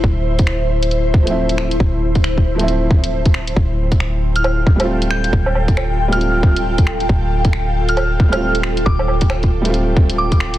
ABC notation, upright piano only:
X:1
M:4/4
L:1/16
Q:"Swing 16ths" 1/4=136
K:F
V:1 name="Upright piano"
[F,A,CE]8- [F,A,CE]3 [F,A,CE]4- [F,A,CE]- | [F,A,CE]6- [F,A,CE] [F,A,CE]8- [F,A,CE] | z8 z3 [G,A,CF]4- [G,A,CF]- | [G,A,CF]6- [G,A,CF] [G,A,CF]8- [G,A,CF]- |
[G,A,CF]8- [G,A,CF]3 [G,A,CF]4- [G,A,CF]- | [G,A,CF]6- [G,A,CF] [G,A,CF]6- [G,A,CF] z2 |]